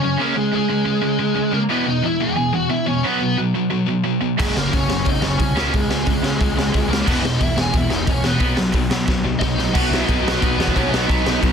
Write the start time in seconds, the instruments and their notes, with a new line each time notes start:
Already playing: lead electric guitar C#4 C#5
0.03 distorted electric guitar F#2 C#3
0.20 distorted electric guitar C#3 G#3 C#4, lead electric guitar A#3 A#4
0.36 distorted electric guitar C#3 G#3, lead electric guitar G#3 G#4
0.53 distorted electric guitar C#3 G#3, lead electric guitar G#3 G#4
0.70 distorted electric guitar C#3 G#3
0.85 distorted electric guitar C#3 G#3
1.01 distorted electric guitar C#3 G#3
1.19 distorted electric guitar C#3 G#3
1.35 distorted electric guitar C#3 G#3
1.51 distorted electric guitar C#3 G#3, lead electric guitar A#4
1.56 lead electric guitar A#3
1.69 distorted electric guitar E2 B2 E3, lead electric guitar B3 B4
1.86 distorted electric guitar E2 B2, lead electric guitar D#4 D#5
2.02 distorted electric guitar E2 B2, lead electric guitar E4 E5
2.20 distorted electric guitar E2 B2, lead electric guitar G#4 G#5
2.36 distorted electric guitar E2 B2
2.53 distorted electric guitar E2 B2, lead electric guitar F#4 F#5
2.69 distorted electric guitar E2 B2, lead electric guitar E4 E5
2.86 distorted electric guitar E2 B2, lead electric guitar C#4 C#5
3.03 distorted electric guitar B2 F#3 B3, lead electric guitar B3 B4
3.20 distorted electric guitar B2 F#3
3.38 distorted electric guitar B2 F#3
3.55 distorted electric guitar B2 F#3
3.70 distorted electric guitar B2 F#3
3.86 distorted electric guitar B2 F#3
4.04 distorted electric guitar B2 F#3
4.21 distorted electric guitar B2 F#3
4.38 picked electric bass F#1, distorted electric guitar F#2 C#3 F#3, lead electric guitar G#3 G#4, kick, crash
4.55 picked electric bass F#1, distorted electric guitar F#2 C#3, lead electric guitar A#3 A#4, snare
4.72 picked electric bass F#1, distorted electric guitar F#2 C#3, lead electric guitar C#4 C#5, kick, open hi-hat
4.89 picked electric bass F#1, distorted electric guitar F#2 C#3, snare
5.05 picked electric bass F#1, distorted electric guitar F#2 C#3, lead electric guitar D#4 D#5, kick, open hi-hat
5.22 picked electric bass F#1, distorted electric guitar F#2 C#3, lead electric guitar C#4 C#5, snare
5.38 picked electric bass C2, distorted electric guitar F#2 C#3, kick, open hi-hat
5.56 picked electric bass C#2, distorted electric guitar C#3 G#3 C#4, lead electric guitar A#3 A#4, snare
5.73 picked electric bass C#2, distorted electric guitar C#3 G#3, lead electric guitar G#3 G#4, kick, open hi-hat
5.88 picked electric bass C#2, distorted electric guitar C#3 G#3, lead electric guitar G#3 G#4, snare
6.06 picked electric bass C#2, distorted electric guitar C#3 G#3, kick, open hi-hat
6.22 picked electric bass C#3, distorted electric guitar C#3 G#3, snare
6.41 picked electric bass C#2, distorted electric guitar C#3 G#3, kick, open hi-hat
6.56 picked electric bass C#2, distorted electric guitar C#3 G#3, snare
6.74 picked electric bass C#2, distorted electric guitar C#3 G#3, kick, open hi-hat
6.88 picked electric bass C#2, distorted electric guitar C#3 G#3, lead electric guitar A#3 A#4
6.93 snare
7.07 picked electric bass E1, distorted electric guitar E2 B2 E3, lead electric guitar B3 B4, kick, crash
7.22 picked electric bass E1, distorted electric guitar E2 B2, lead electric guitar D#4 D#5, snare
7.41 picked electric bass E1, distorted electric guitar E2 B2, lead electric guitar E4 E5, kick, open hi-hat
7.56 picked electric bass E1, distorted electric guitar E2 B2, lead electric guitar G#4, snare
7.61 lead electric guitar G#5
7.73 picked electric bass E1, distorted electric guitar E2 B2, lead electric guitar E4 E5, kick, open hi-hat
7.90 picked electric bass E1, distorted electric guitar E2 B2, lead electric guitar D#4, snare
7.95 lead electric guitar D#5
8.07 picked electric bass E1, distorted electric guitar E2 B2, lead electric guitar C#4 C#5, kick, open hi-hat
8.24 picked electric bass E1, distorted electric guitar E2 B2, lead electric guitar B3 B4, snare
8.40 picked electric bass B1, distorted electric guitar B2 F#3 B3, kick, open hi-hat
8.57 picked electric bass B1, distorted electric guitar B2 F#3, snare
8.72 picked electric bass B1, distorted electric guitar B2 F#3, kick, open hi-hat
8.90 picked electric bass B2, distorted electric guitar B2 F#3, snare
9.08 picked electric bass B1, distorted electric guitar B2 F#3, kick, snare
9.24 picked electric bass B1, distorted electric guitar B2 F#3
9.39 picked electric bass B1, distorted electric guitar B2 F#3, lead electric guitar D#4 D#5, kick, snare
9.57 picked electric bass B1, distorted electric guitar B2 F#3, snare
9.74 picked electric bass B1, distorted electric guitar B2 F#3 B3, overdriven electric guitar D#4, lead electric guitar F#4 F#5, kick, crash
9.89 picked electric bass B1, lead electric guitar E4 E5
9.93 snare
10.05 picked electric bass B1, lead electric guitar D#4 D#5, kick
10.09 crash
10.23 picked electric bass B1, overdriven electric guitar F#3 B3
10.28 overdriven electric guitar B2, snare
10.39 picked electric bass B1, lead electric guitar B3 B4, kick
10.43 crash
10.57 picked electric bass E2, distorted electric guitar B2 F#3 B3, snare
10.68 kick
10.72 picked electric bass B1, distorted electric guitar B2 F#3, lead electric guitar C#4 C#5
10.76 distorted electric guitar B3, kick, crash
10.91 picked electric bass B1, overdriven electric guitar B2 F#3 B3 D#4, lead electric guitar D#4 D#5, snare
11.09 picked electric bass B1, distorted electric guitar B2 F#3 B3, overdriven electric guitar D#4, kick, crash
11.26 picked electric bass B1, snare
11.42 picked electric bass B1, kick, crash